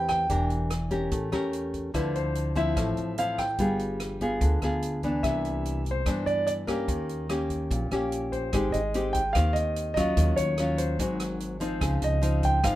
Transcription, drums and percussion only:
0.09 kick soft
0.09 cross-stick soft
0.09 closed hi-hat soft
0.30 kick medium
0.30 closed hi-hat soft
0.50 closed hi-hat soft
0.70 cross-stick medium
0.70 closed hi-hat soft
0.91 kick soft
0.91 closed hi-hat soft
1.11 kick medium
1.11 closed hi-hat soft
1.32 cross-stick soft
1.32 closed hi-hat soft
1.53 closed hi-hat soft
1.74 kick soft
1.74 closed hi-hat soft
1.94 kick soft
1.94 cross-stick medium
1.94 closed hi-hat soft
2.15 closed hi-hat soft
2.35 closed hi-hat soft
2.56 kick soft
2.56 closed hi-hat soft
2.77 kick medium
2.77 cross-stick medium
2.77 closed hi-hat soft
2.97 closed hi-hat soft
3.18 closed hi-hat soft
3.38 kick soft
3.38 cross-stick medium
3.38 closed hi-hat soft
3.58 kick medium
3.58 closed hi-hat soft
3.79 closed hi-hat soft
4.00 cross-stick medium
4.00 closed hi-hat soft
4.20 kick soft
4.20 closed hi-hat soft
4.41 kick medium
4.41 closed hi-hat soft
4.62 cross-stick medium
4.62 closed hi-hat soft
4.82 closed hi-hat soft
5.03 kick soft
5.03 closed hi-hat soft
5.24 kick medium
5.24 cross-stick soft
5.24 closed hi-hat soft
5.45 closed hi-hat soft
5.65 closed hi-hat soft
5.85 kick soft
5.85 closed hi-hat soft
6.06 kick medium
6.06 cross-stick medium
6.06 closed hi-hat soft
6.27 closed hi-hat soft
6.47 closed hi-hat soft
6.68 kick soft
6.68 cross-stick medium
6.68 closed hi-hat soft
6.88 kick medium
6.88 closed hi-hat soft
7.09 closed hi-hat soft
7.29 cross-stick medium
7.29 closed hi-hat soft
7.50 kick soft
7.50 closed hi-hat soft
7.71 kick medium
7.71 closed hi-hat soft
7.91 cross-stick soft
7.91 closed hi-hat soft
8.12 closed hi-hat soft
8.33 kick soft
8.33 closed hi-hat soft
8.53 kick medium
8.53 cross-stick medium
8.53 closed hi-hat medium
8.74 closed hi-hat soft
8.94 closed hi-hat soft
9.14 kick medium
9.14 closed hi-hat soft
9.35 kick medium
9.35 cross-stick medium
9.35 closed hi-hat medium
9.56 closed hi-hat soft
9.76 closed hi-hat soft
9.97 kick medium
9.97 cross-stick medium
9.97 closed hi-hat soft
10.17 kick medium
10.17 closed hi-hat medium
10.37 closed hi-hat soft
10.58 cross-stick medium
10.58 closed hi-hat soft
10.78 closed hi-hat soft
10.99 kick medium
10.99 closed hi-hat medium
11.20 cross-stick medium
11.20 closed hi-hat soft
11.40 closed hi-hat soft
11.61 closed hi-hat soft
11.81 kick medium
11.81 cross-stick medium
11.81 closed hi-hat soft
12.02 closed hi-hat soft
12.22 closed hi-hat soft
12.43 kick medium
12.43 closed hi-hat soft
12.64 kick medium
12.64 cross-stick medium
12.64 closed hi-hat medium

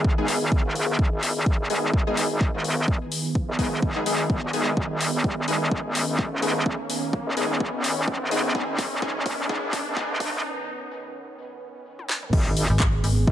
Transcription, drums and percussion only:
0.05 kick loud
0.28 open hi-hat loud
0.52 kick loud
0.75 open hi-hat medium
0.99 kick loud
1.23 open hi-hat loud
1.46 kick loud
1.70 open hi-hat medium
1.94 kick loud
2.17 open hi-hat loud
2.41 kick loud
2.64 open hi-hat medium
2.88 kick loud
3.12 open hi-hat loud
3.35 kick loud
3.59 kick medium
3.59 open hi-hat medium
3.83 kick loud
4.06 open hi-hat loud
4.30 kick loud
4.53 open hi-hat medium
4.77 kick loud
5.01 open hi-hat loud
5.24 kick loud
5.48 open hi-hat medium
5.71 kick loud
5.95 open hi-hat loud
6.19 kick loud
6.42 open hi-hat medium
6.66 kick loud
6.90 open hi-hat loud
7.13 kick loud
7.37 open hi-hat medium
7.60 kick loud
7.84 open hi-hat loud
8.08 kick loud
8.31 open hi-hat medium
8.55 kick loud
8.79 kick loud
8.79 open hi-hat loud
9.02 kick loud
9.26 kick loud
9.26 open hi-hat medium
9.49 kick loud
9.73 kick loud
9.73 open hi-hat loud
9.97 kick loud
10.20 kick loud
10.20 open hi-hat medium
11.99 high tom soft
12.09 snare medium
12.23 mid tom medium
12.33 kick loud
12.33 crash loud
12.57 open hi-hat loud
12.80 kick loud
12.80 clap loud
13.04 open hi-hat medium
13.27 kick loud

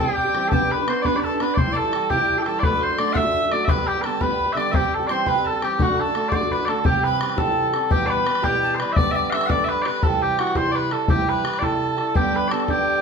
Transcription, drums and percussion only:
0.18 bodhran soft
0.35 bodhran medium
0.52 bodhran medium
0.88 bodhran medium
1.05 bodhran medium
1.24 bodhran soft
1.40 bodhran medium
1.57 bodhran medium
1.93 bodhran medium
2.10 bodhran medium
2.29 bodhran soft
2.46 bodhran soft
2.63 bodhran medium
2.99 bodhran medium
3.15 bodhran medium
3.34 bodhran soft
3.52 bodhran medium
3.68 bodhran medium
4.04 bodhran medium
4.21 bodhran medium
4.40 bodhran soft
4.57 bodhran medium
4.74 bodhran medium
5.09 bodhran medium
5.26 bodhran medium
5.45 bodhran soft
5.62 bodhran medium
5.79 bodhran medium
6.15 bodhran medium
6.32 bodhran medium
6.51 bodhran soft
6.68 bodhran medium
6.85 bodhran medium
7.21 bodhran medium
7.29 bodhran soft
7.38 bodhran medium
7.74 bodhran medium
7.91 bodhran medium
8.27 bodhran medium
8.35 bodhran medium
8.44 bodhran medium
8.80 bodhran medium
8.97 bodhran medium
9.32 bodhran medium
9.41 bodhran medium
9.50 bodhran medium
9.85 bodhran medium
10.03 bodhran medium
10.39 bodhran medium
10.47 bodhran medium
10.55 bodhran medium
10.91 bodhran medium
11.08 bodhran medium
11.45 bodhran medium
11.54 bodhran medium
11.62 bodhran medium
11.98 bodhran soft
12.15 bodhran medium
12.51 bodhran medium
12.60 bodhran soft
12.68 bodhran medium

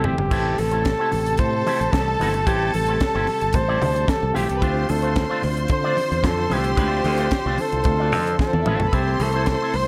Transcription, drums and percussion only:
0.04 floor tom loud
0.04 high conga medium
0.18 floor tom loud
0.31 kick loud
0.31 crash loud
0.58 open hi-hat medium
0.58 muted conga medium
0.71 closed hi-hat soft
0.85 kick loud
0.85 snare loud
0.85 closed hi-hat medium
0.85 high conga medium
1.12 open hi-hat medium
1.12 muted conga soft
1.12 low conga medium
1.26 closed hi-hat medium
1.37 kick loud
1.37 closed hi-hat medium
1.37 muted conga soft
1.67 open hi-hat medium
1.67 muted conga medium
1.81 closed hi-hat soft
1.93 kick loud
1.93 snare loud
1.93 closed hi-hat medium
1.93 high conga medium
2.20 open hi-hat medium
2.20 high conga medium
2.34 closed hi-hat medium
2.47 kick loud
2.47 closed hi-hat medium
2.74 open hi-hat medium
2.74 muted conga medium
2.87 closed hi-hat soft
3.00 kick loud
3.00 snare loud
3.00 closed hi-hat medium
3.00 high conga medium
3.27 open hi-hat medium
3.27 muted conga soft
3.41 closed hi-hat soft
3.53 kick loud
3.53 closed hi-hat medium
3.53 muted conga soft
3.53 low conga medium
3.82 open hi-hat medium
3.82 muted conga medium
3.82 low conga loud
3.96 closed hi-hat soft
4.08 kick loud
4.08 snare loud
4.08 closed hi-hat medium
4.08 high conga medium
4.35 open hi-hat medium
4.35 high conga medium
4.49 closed hi-hat medium
4.62 kick loud
4.62 closed hi-hat medium
4.89 open hi-hat medium
4.89 muted conga medium
5.02 closed hi-hat soft
5.16 kick loud
5.16 snare loud
5.16 closed hi-hat medium
5.16 high conga medium
5.42 open hi-hat medium
5.42 muted conga soft
5.42 low conga medium
5.57 closed hi-hat soft
5.68 kick loud
5.68 closed hi-hat medium
5.68 muted conga soft
5.97 open hi-hat medium
5.97 muted conga medium
6.12 closed hi-hat soft
6.23 kick loud
6.23 snare loud
6.23 closed hi-hat medium
6.23 high conga medium
6.50 open hi-hat medium
6.50 high conga medium
6.64 closed hi-hat medium
6.77 kick loud
6.77 closed hi-hat medium
7.04 open hi-hat medium
7.04 muted conga medium
7.18 closed hi-hat soft
7.31 kick loud
7.31 snare loud
7.31 closed hi-hat medium
7.31 high conga medium
7.58 open hi-hat medium
7.58 muted conga medium
7.72 closed hi-hat medium
7.84 kick loud
7.84 closed hi-hat medium
7.84 low conga medium
8.12 open hi-hat medium
8.12 muted conga medium
8.12 low conga medium
8.27 closed hi-hat soft
8.39 kick loud
8.39 snare medium
8.39 high conga medium
8.53 high tom medium
8.66 mid tom loud
8.66 high conga medium
8.80 floor tom loud
8.93 kick loud
8.93 closed hi-hat medium
9.20 open hi-hat medium
9.20 muted conga medium
9.33 closed hi-hat soft
9.46 kick loud
9.46 snare loud
9.46 closed hi-hat medium
9.46 high conga medium
9.74 open hi-hat medium
9.74 muted conga medium
9.74 low conga medium

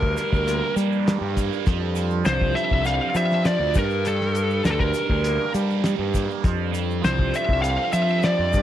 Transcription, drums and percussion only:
0.03 kick medium
0.17 closed hi-hat medium
0.17 shaker medium
0.33 kick medium
0.33 shaker soft
0.48 closed hi-hat medium
0.48 shaker medium
0.77 closed hi-hat medium
0.77 shaker loud
0.92 shaker soft
1.08 snare loud
1.08 closed hi-hat medium
1.08 shaker medium
1.37 kick medium
1.37 closed hi-hat medium
1.37 shaker loud
1.53 shaker soft
1.66 kick loud
1.66 closed hi-hat medium
1.66 shaker medium
1.95 closed hi-hat medium
1.95 shaker medium
2.10 shaker soft
2.25 snare loud
2.25 closed hi-hat medium
2.25 shaker medium
2.41 kick medium
2.57 closed hi-hat medium
2.71 kick medium
2.85 closed hi-hat medium
2.85 shaker medium
3.15 closed hi-hat medium
3.15 shaker loud
3.31 snare soft
3.31 shaker soft
3.45 snare medium
3.45 closed hi-hat medium
3.45 shaker medium
3.74 kick loud
3.74 closed hi-hat medium
3.74 shaker medium
3.90 shaker soft
4.05 closed hi-hat medium
4.05 shaker medium
4.21 snare soft
4.35 closed hi-hat medium
4.35 shaker medium
4.50 shaker soft
4.65 snare loud
4.65 closed hi-hat medium
4.65 shaker medium
4.80 kick medium
4.94 closed hi-hat medium
4.94 shaker medium
5.10 kick medium
5.24 closed hi-hat medium
5.24 shaker medium
5.54 closed hi-hat medium
5.54 shaker medium
5.70 shaker soft
5.84 snare medium
5.84 closed hi-hat medium
5.84 shaker medium
6.14 kick medium
6.14 closed hi-hat medium
6.14 shaker medium
6.30 shaker soft
6.44 kick loud
6.44 closed hi-hat medium
6.44 shaker medium
6.74 closed hi-hat medium
6.74 shaker medium
6.90 shaker soft
7.04 snare loud
7.04 closed hi-hat medium
7.04 shaker medium
7.19 kick medium
7.34 closed hi-hat medium
7.34 shaker medium
7.49 kick medium
7.64 closed hi-hat medium
7.64 shaker medium
7.93 closed hi-hat medium
7.93 shaker medium
8.08 shaker soft
8.23 snare loud
8.23 closed hi-hat medium
8.23 shaker medium
8.53 kick loud
8.53 closed hi-hat medium
8.53 shaker medium

